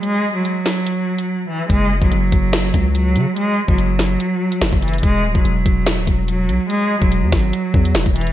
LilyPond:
<<
  \new Staff \with { instrumentName = "Cello" } { \clef bass \time 4/4 \key e \mixolydian \tempo 4 = 144 gis8. fis2~ fis8. e8 | gis8. fis2~ fis16 fis4 | gis8. fis2~ fis8. e8 | gis8. fis2~ fis16 fis4 |
gis8. fis2~ fis8. e8 | }
  \new Staff \with { instrumentName = "808-style bass" } { \clef bass \time 4/4 \key e \mixolydian r1 | fis,,8. fis,,16 fis,,8 fis,,4 cis,4 cis16 r16 | r8. fis,,4~ fis,,16 r4 fis,,16 fis,,8. | e,,8 d,,16 e,,16 e,,8 e,,8. d,,16 e,,4 b,,16 r16 |
r8. e,,8 e,16 gis,,8 r8 e,8 e,,16 e,,8. | }
  \new DrumStaff \with { instrumentName = "Drums" } \drummode { \time 4/4 hh4 hh8 <hh sn>8 hh8. hh16 r4 | <hh bd>8. bd16 hh8 <hh bd>8 <hh sn>8 <hh bd>8 hh8 hh8 | hh8. bd16 hh8 <hh sn>8 hh8. hh16 <hh sn>16 bd16 hh32 hh32 hh32 hh32 | <hh bd>8. bd16 hh8 <hh bd>8 <hh sn>8 <hh bd>8 hh8 hh8 |
hh8. bd16 hh8 <hh bd sn>8 hh8 bd16 hh16 <hh sn>16 bd16 hh32 hh32 hh16 | }
>>